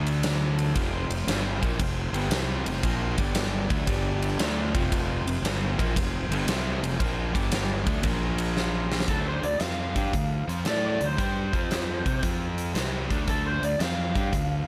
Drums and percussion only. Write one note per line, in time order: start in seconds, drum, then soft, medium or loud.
0.07 ride medium
0.23 snare loud
0.23 ride medium
0.59 ride medium
0.75 kick medium
0.75 ride medium
1.11 ride medium
1.28 snare loud
1.28 ride medium
1.63 kick loud
1.63 ride medium
1.79 kick loud
1.79 ride loud
2.14 ride medium
2.31 snare loud
2.31 ride medium
2.66 ride medium
2.83 kick loud
2.83 ride medium
3.18 kick medium
3.18 ride medium
3.35 snare loud
3.35 ride loud
3.70 kick loud
3.70 ride medium
3.87 kick loud
3.87 ride medium
4.22 ride medium
4.39 snare loud
4.39 ride medium
4.75 kick loud
4.75 ride medium
4.92 kick medium
4.92 ride medium
5.28 ride medium
5.45 snare loud
5.45 ride medium
5.79 kick loud
5.79 ride medium
5.96 kick medium
5.96 ride medium
6.32 ride medium
6.48 snare loud
6.48 ride medium
6.84 ride medium
7.00 kick loud
7.00 ride medium
7.35 kick loud
7.35 ride medium
7.52 snare loud
7.52 ride loud
7.87 kick loud
7.87 ride medium
8.03 kick loud
8.03 ride loud
8.38 ride medium
8.57 snare medium
8.92 snare medium
9.00 snare medium
9.08 kick medium
9.08 closed hi-hat medium
9.43 closed hi-hat soft
9.60 snare medium
9.60 closed hi-hat medium
9.96 kick medium
9.96 closed hi-hat medium
10.13 kick medium
10.13 closed hi-hat medium
10.49 closed hi-hat medium
10.65 snare loud
10.65 closed hi-hat medium
11.01 closed hi-hat medium
11.18 kick medium
11.18 closed hi-hat medium
11.53 kick medium
11.53 closed hi-hat medium
11.71 snare medium
11.71 closed hi-hat medium
12.06 kick medium
12.06 closed hi-hat medium
12.23 kick loud
12.23 closed hi-hat medium
12.58 closed hi-hat medium
12.75 snare medium
12.75 closed hi-hat medium
13.11 kick medium
13.11 closed hi-hat medium
13.28 kick medium
13.28 closed hi-hat medium
13.63 closed hi-hat medium
13.80 snare medium
13.80 closed hi-hat medium
14.15 kick medium
14.15 closed hi-hat medium
14.33 kick medium
14.33 closed hi-hat medium